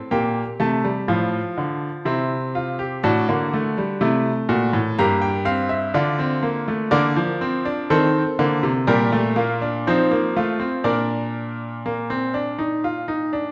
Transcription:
0.11 A#2 A#3 G4 G5
0.60 C3 A3 A5
0.84 G3
1.08 A2 F3 F4
1.58 D3
2.05 C3 C4 E4
2.55 F4
2.79 G4
3.03 A2 D4 F#4 A5
3.29 D3 A#3
3.54 A3
3.78 G3
4.01 C3 A3 E4
4.49 A#2 F#4
4.73 A2
4.99 G2 A#3 G4 A#5
5.22 G5
5.45 C4 F5
5.69 E5
5.94 D3 D4 F4
6.19 C4
6.43 A#3
6.68 A3
6.91 D3 A#3 A#4 D5
7.16 F3
7.41 C4
7.65 D4
7.90 D#3 C4 A4 C5
8.39 D3 A#3
8.63 C3
8.87 A#2 G3 G4 A#4
9.12 A3
9.36 A#3 F4
9.62 D4
9.87 F3 C4 D#4 C5
10.11 A#3
10.36 A3 F4
10.60 C4
10.84 A#2 D4 A#4 D5
11.86 A#3
12.10 C4
12.34 D4
12.59 D#4
12.84 F4
13.08 D#4
13.33 D4

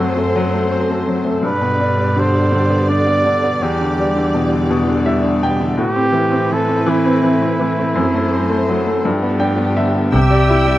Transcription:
Already playing: F#2 F#3 A3 C4 F#4 A4 C5
0.00 F#3
0.17 A3
0.36 F#3
0.53 A3
0.71 C4
0.90 A3
1.08 F#3
1.25 A3
1.43 G2 B2 D3 G4 B4 D5
1.61 B2
1.80 D4
1.98 G3
2.16 D3 C5
2.52 D3
2.70 B3
2.89 D4 D5
3.07 B3
3.25 D3
3.44 B3
3.60 E2 E3 G3 G4
3.81 D3
3.99 G3
4.16 D3
4.34 B2
4.52 D3
4.70 B2
4.88 D3
5.06 G3 E5
5.24 D3
5.43 B2 G5
5.60 D3
5.77 A2 A3 C4 E4 G4 B4
5.96 C4
6.12 E3
6.32 C4
6.51 E3 A4
6.68 C4
6.86 E3 E4
7.06 C4
7.22 E3
7.42 C4
7.60 E3
7.79 C4
7.95 F#2 F#3 C5
8.14 A3
8.32 C4
8.50 A3
8.69 F#3
8.87 A3
9.05 G2 F3 B3 G4
9.23 B3
9.40 D4 G5
9.57 B3
9.76 D3 E5
9.95 B3
10.12 C2 C3 G4 E5 G5 E6
10.30 G3
10.50 E4
10.66 G3

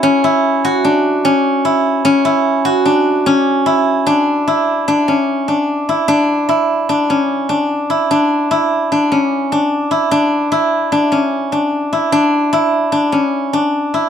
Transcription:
Already playing: E4 F#4
0.03 C#4
0.24 E4
0.65 F#4
0.85 D4
1.25 C#4
1.65 E4
2.05 C#4
2.25 E4
2.65 F#4
2.86 D4
3.26 C#4
3.66 E4
4.06 D4
4.47 E4
4.88 D4
5.08 C#4
5.48 D4
5.89 E4
6.08 D4
6.49 E4
6.89 D4
7.10 C#4
7.49 D4
7.90 E4
8.11 D4
8.51 E4
8.92 D4
9.12 C#4
9.52 D4
9.91 E4
10.11 D4
10.52 E4
10.92 D4
11.12 C#4
11.52 D4
11.93 E4
12.12 D4
12.53 E4
12.92 D4
13.12 C#4
13.53 D4
13.94 E4

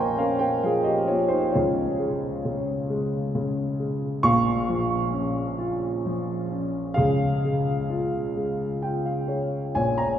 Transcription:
Already playing: A#1 A#2 F3 A#3 A#4 C5 C#5 D#5 F5 G5 G#5 A#5 C6 C#6
0.17 C#4 A#4 F5
0.39 A#4 G5
0.63 F3 G#4 F5
0.84 G4 D#5
1.08 A#3 F4 C#5
1.28 D#4 C5
1.52 C#2 C#3 F4 C#5
2.00 G#3
2.45 C#3
2.90 G#3
3.35 C#3
3.80 G#3
4.23 A#1 A#2 F5 C#6
4.69 F3
5.13 C#4
5.58 F4
6.06 F3
6.51 C#4
6.94 C#2 C#3 G#4 F5
7.45 G#3
7.90 F4
8.36 G#3
8.82 F4 G5
9.06 F5
9.28 G#3 C#5
9.75 A#1 A#2 C#5 G#5
9.98 C#5 A#5

